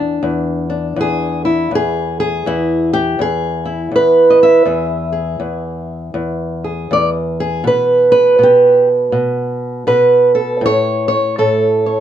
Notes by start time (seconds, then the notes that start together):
Already playing: E2 D4 G#4
0.23 E2
0.70 D4
0.96 E2
1.01 G#4
1.45 E4
1.71 E2
1.75 G#4
2.20 G#4
2.46 E2 E4
2.93 G4
3.19 E2 G#4
3.65 E4
3.91 E2
3.96 B4
4.30 D#5
4.43 E5
4.65 E2 G#4
5.12 G#4
5.40 E2
6.14 E2
6.64 G#4
6.91 E2 D5
7.40 G#4
7.64 B2 B4
8.12 B4
8.39 B2
8.43 G4
9.12 B2
9.87 B2 B4
10.35 A4
10.61 A2
10.66 C#5
11.08 C#5
11.38 A2 A4
11.86 C#5